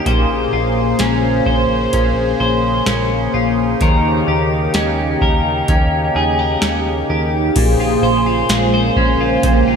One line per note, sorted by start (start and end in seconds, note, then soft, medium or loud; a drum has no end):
0.00 7.53 A#3 medium
0.00 0.99 C#4 medium
0.00 0.16 G4 soft
0.06 0.47 A#1 loud
0.06 3.81 A#2 medium
0.06 7.52 C#3 medium
0.06 3.78 G#4 medium
0.06 3.78 C5 medium
0.06 1.45 C5 medium
0.06 kick medium
0.06 closed hi-hat medium
0.53 0.94 A#1 medium
0.53 3.33 F4 medium
0.99 1.41 A#1 loud
0.99 1.93 C#4 medium
0.99 snare loud
0.99 closed hi-hat medium
1.46 1.88 A#1 medium
1.46 2.39 C5 medium
1.46 kick medium
1.93 2.35 A#1 loud
1.93 2.86 C#4 medium
1.93 kick medium
1.93 closed hi-hat medium
2.40 2.82 A#1 loud
2.40 3.81 C5 medium
2.86 3.28 A#1 medium
2.86 4.31 C#4 soft
2.86 snare loud
2.86 closed hi-hat medium
3.34 3.75 A#1 medium
3.34 3.90 F4 medium
3.80 4.22 D#2 medium
3.80 7.56 D#3 medium
3.80 7.52 D#4 medium
3.80 7.52 G4 medium
3.80 5.21 A#4 medium
3.80 kick medium
3.80 closed hi-hat medium
4.27 4.69 D#2 medium
4.27 7.09 G4 medium
4.74 5.16 D#2 loud
4.74 5.68 C#4 medium
4.74 snare loud
4.74 closed hi-hat medium
5.21 5.63 D#2 medium
5.21 6.16 A#4 medium
5.21 kick medium
5.68 6.10 D#2 loud
5.68 6.61 C#4 medium
5.68 kick medium
5.68 closed hi-hat medium
6.15 6.57 D#2 medium
6.15 6.39 G#4 medium
6.39 7.66 A#4 soft
6.62 7.04 D#2 medium
6.62 8.06 C#4 soft
6.62 snare loud
6.62 closed hi-hat medium
7.10 7.51 D#2 medium
7.10 7.66 G4 soft
7.55 7.97 A#1 loud
7.55 9.43 A#2 medium
7.55 9.76 C#3 medium
7.55 9.76 A#3 medium
7.55 9.41 G#4 medium
7.55 9.76 C5 medium
7.55 kick loud
7.55 closed hi-hat medium
7.55 crash medium
7.80 8.25 F4 medium
8.02 8.44 A#1 loud
8.02 8.72 C5 medium
8.26 9.19 F4 medium
8.49 8.91 A#1 loud
8.49 9.76 G#3 medium
8.49 snare loud
8.49 closed hi-hat medium
8.49 tambourine medium
8.74 9.76 C5 medium
8.96 9.38 A#1 loud
8.96 9.76 C#4 medium
8.96 kick medium
9.21 9.66 F4 medium
9.43 9.76 A#1 medium
9.43 9.76 A#2 medium
9.43 9.76 G4 medium
9.43 kick medium
9.43 closed hi-hat medium
9.68 9.76 F4 medium